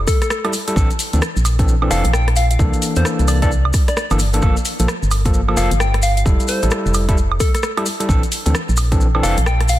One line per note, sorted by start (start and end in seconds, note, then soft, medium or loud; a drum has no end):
0.07 0.19 A4 medium
0.07 kick loud
0.07 cross-stick medium
0.07 open hi-hat loud
0.07 maracas loud
0.22 0.27 A4 medium
0.22 cross-stick medium
0.22 closed hi-hat medium
0.22 maracas soft
0.30 0.40 A4 medium
0.30 cross-stick loud
0.30 maracas soft
0.45 0.52 G3 loud
0.45 0.52 E4 medium
0.45 0.52 A4 loud
0.45 cross-stick medium
0.45 closed hi-hat medium
0.45 high woodblock medium
0.53 open hi-hat loud
0.53 maracas medium
0.68 0.75 G3 medium
0.68 0.75 E4 medium
0.68 0.75 A4 loud
0.68 closed hi-hat medium
0.68 maracas soft
0.76 0.88 A#1 loud
0.76 0.89 E3 medium
0.76 0.89 C4 medium
0.76 0.89 D4 medium
0.76 0.89 A4 medium
0.76 kick loud
0.76 maracas medium
0.91 closed hi-hat soft
0.91 maracas soft
0.99 open hi-hat loud
0.99 maracas loud
1.13 1.21 D2 medium
1.13 1.21 E3 medium
1.13 1.21 C4 medium
1.13 1.21 D4 medium
1.13 1.21 A4 medium
1.13 closed hi-hat medium
1.13 maracas soft
1.22 cross-stick loud
1.22 maracas medium
1.36 1.89 A#1 medium
1.36 maracas soft
1.45 open hi-hat medium
1.45 high woodblock medium
1.45 maracas loud
1.59 1.74 E3 medium
1.59 1.74 C4 medium
1.59 1.74 D4 medium
1.59 1.74 A4 loud
1.59 kick loud
1.59 closed hi-hat medium
1.59 maracas soft
1.68 maracas medium
1.82 1.89 E3 loud
1.82 1.89 C4 medium
1.82 1.89 D4 medium
1.82 1.89 A4 loud
1.82 high woodblock medium
1.91 2.03 F1 medium
1.91 2.03 E3 loud
1.91 2.03 C4 medium
1.91 2.03 D4 medium
1.91 2.03 A4 loud
1.91 2.04 F5 medium
1.91 cross-stick medium
1.91 open hi-hat loud
1.91 maracas loud
2.04 2.57 A#1 loud
2.04 closed hi-hat medium
2.04 maracas soft
2.13 2.27 G5 medium
2.13 cross-stick loud
2.13 maracas medium
2.28 cross-stick medium
2.28 closed hi-hat medium
2.36 2.46 F5 medium
2.36 open hi-hat medium
2.36 maracas medium
2.51 2.56 F5 medium
2.51 closed hi-hat medium
2.51 maracas soft
2.59 2.72 C2 loud
2.59 2.93 E3 medium
2.59 2.93 A#3 medium
2.59 2.93 D4 medium
2.59 2.93 A4 medium
2.59 kick loud
2.59 maracas medium
2.73 closed hi-hat soft
2.73 maracas soft
2.82 open hi-hat loud
2.82 maracas medium
2.96 3.04 E2 medium
2.96 3.39 E3 medium
2.96 3.39 A#3 medium
2.96 3.39 D4 medium
2.96 3.39 A4 medium
2.96 3.05 C5 medium
2.96 closed hi-hat medium
2.96 maracas soft
3.05 cross-stick loud
3.05 maracas soft
3.19 3.72 C2 medium
3.19 closed hi-hat soft
3.19 maracas soft
3.28 3.37 D5 medium
3.28 open hi-hat medium
3.28 high woodblock medium
3.28 maracas medium
3.42 3.50 E3 loud
3.42 3.50 A#3 medium
3.42 3.50 D4 medium
3.42 3.50 A4 loud
3.42 3.48 D5 medium
3.42 kick loud
3.42 closed hi-hat medium
3.42 maracas soft
3.51 maracas medium
3.65 high woodblock medium
3.73 kick loud
3.73 cross-stick medium
3.73 open hi-hat loud
3.73 maracas loud
3.88 3.94 D5 medium
3.88 cross-stick medium
3.88 closed hi-hat medium
3.88 maracas soft
3.97 4.06 D5 medium
3.97 cross-stick loud
3.97 maracas medium
4.10 4.41 G1 medium
4.10 4.19 E3 medium
4.10 4.19 A#3 medium
4.10 4.19 D4 medium
4.10 4.19 A4 loud
4.10 cross-stick medium
4.10 closed hi-hat medium
4.10 high woodblock medium
4.10 maracas soft
4.19 open hi-hat medium
4.19 maracas loud
4.33 4.41 E3 medium
4.33 4.41 A#3 medium
4.33 4.41 D4 medium
4.33 4.41 A4 loud
4.33 closed hi-hat medium
4.33 maracas soft
4.42 4.55 G1 loud
4.42 4.55 F3 medium
4.42 4.55 A#3 medium
4.42 4.55 A4 medium
4.42 kick loud
4.42 maracas medium
4.57 closed hi-hat soft
4.57 maracas soft
4.65 open hi-hat loud
4.65 maracas loud
4.79 4.87 A#1 medium
4.79 4.87 F3 medium
4.79 4.87 A#3 medium
4.79 4.87 A4 medium
4.79 closed hi-hat medium
4.79 maracas soft
4.88 cross-stick loud
4.88 maracas soft
5.03 5.55 G1 medium
5.03 maracas soft
5.11 open hi-hat medium
5.11 high woodblock medium
5.11 maracas loud
5.25 5.40 F3 medium
5.25 5.40 A#3 medium
5.25 5.40 A4 medium
5.25 kick loud
5.25 closed hi-hat medium
5.25 maracas soft
5.34 maracas soft
5.48 5.56 F3 medium
5.48 5.56 A#3 medium
5.48 5.56 A4 loud
5.48 high woodblock medium
5.57 5.69 F1 medium
5.57 5.70 F3 loud
5.57 5.70 A#3 medium
5.57 5.70 A4 loud
5.57 5.70 F5 medium
5.57 cross-stick medium
5.57 open hi-hat loud
5.57 maracas loud
5.71 6.24 G1 loud
5.71 closed hi-hat medium
5.71 maracas soft
5.80 5.93 G5 medium
5.80 cross-stick loud
5.80 maracas soft
5.94 cross-stick medium
5.94 closed hi-hat medium
6.02 6.12 F5 medium
6.02 open hi-hat medium
6.02 maracas medium
6.17 6.23 F5 medium
6.17 closed hi-hat medium
6.17 maracas soft
6.26 6.38 F1 loud
6.26 6.59 G3 medium
6.26 6.59 E4 medium
6.26 6.59 A4 medium
6.26 kick loud
6.26 maracas medium
6.40 closed hi-hat soft
6.40 maracas soft
6.48 6.62 C5 medium
6.48 open hi-hat loud
6.48 maracas medium
6.62 6.70 A1 medium
6.62 7.05 G3 medium
6.62 7.05 E4 medium
6.62 7.05 A4 medium
6.62 closed hi-hat medium
6.62 maracas soft
6.71 cross-stick loud
6.71 maracas soft
6.86 7.38 F1 medium
6.86 maracas soft
6.94 open hi-hat medium
6.94 high woodblock medium
6.94 maracas medium
7.09 7.16 G3 loud
7.09 7.16 E4 medium
7.09 7.16 A4 loud
7.09 kick loud
7.09 closed hi-hat medium
7.09 maracas soft
7.17 maracas soft
7.32 high woodblock medium
7.40 7.52 A4 loud
7.40 kick loud
7.40 cross-stick medium
7.40 open hi-hat loud
7.40 maracas medium
7.54 7.60 A4 medium
7.54 cross-stick medium
7.54 closed hi-hat medium
7.54 maracas soft
7.63 7.72 A4 medium
7.63 cross-stick loud
7.63 maracas soft
7.77 7.85 G3 medium
7.77 7.85 E4 medium
7.77 7.85 A4 loud
7.77 cross-stick soft
7.77 closed hi-hat medium
7.77 high woodblock medium
7.86 open hi-hat medium
7.86 maracas loud
8.00 8.08 G3 medium
8.00 8.08 E4 medium
8.00 8.08 A4 loud
8.00 closed hi-hat medium
8.00 maracas soft
8.09 8.21 A#1 loud
8.09 8.22 E3 medium
8.09 8.22 C4 medium
8.09 8.22 D4 medium
8.09 8.22 A4 medium
8.09 kick loud
8.09 maracas soft
8.23 closed hi-hat soft
8.23 maracas soft
8.32 open hi-hat loud
8.32 maracas medium
8.45 8.54 D2 medium
8.45 8.54 E3 medium
8.45 8.54 C4 medium
8.45 8.54 D4 medium
8.45 8.54 A4 medium
8.45 closed hi-hat medium
8.45 maracas soft
8.55 cross-stick loud
8.55 maracas soft
8.69 9.21 A#1 medium
8.69 maracas soft
8.77 open hi-hat medium
8.77 high woodblock medium
8.77 maracas loud
8.92 9.06 E3 medium
8.92 9.06 C4 medium
8.92 9.06 D4 medium
8.92 9.06 A4 medium
8.92 kick loud
8.92 closed hi-hat medium
8.92 maracas soft
9.01 maracas medium
9.15 9.22 E3 loud
9.15 9.22 C4 medium
9.15 9.22 D4 medium
9.15 9.22 A4 loud
9.15 high woodblock medium
9.23 9.36 F1 medium
9.23 9.36 E3 loud
9.23 9.36 C4 medium
9.23 9.36 D4 medium
9.23 9.36 A4 loud
9.23 9.37 F5 medium
9.23 cross-stick medium
9.23 open hi-hat loud
9.23 maracas medium
9.37 9.79 A#1 loud
9.37 closed hi-hat medium
9.37 maracas soft
9.46 9.60 G5 medium
9.46 cross-stick loud
9.46 maracas soft
9.61 cross-stick medium
9.61 closed hi-hat medium
9.68 9.78 F5 medium
9.68 open hi-hat loud
9.68 maracas medium